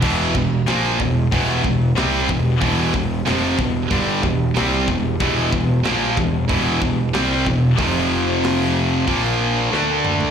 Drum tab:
CC |x---------------|----------------|----------------|----------------|
HH |----o---o---o---|o---o---o---o---|o---o---o---o---|o---o---o-------|
SD |----o-------o---|----o-------o---|----o-------o---|----o-------o---|
T2 |----------------|----------------|----------------|--------------o-|
FT |----------------|----------------|----------------|---------------o|
BD |o-o---o-o-o---o-|o-o---o-o-o---o-|o-o---o-o-o---o-|o-------o-------|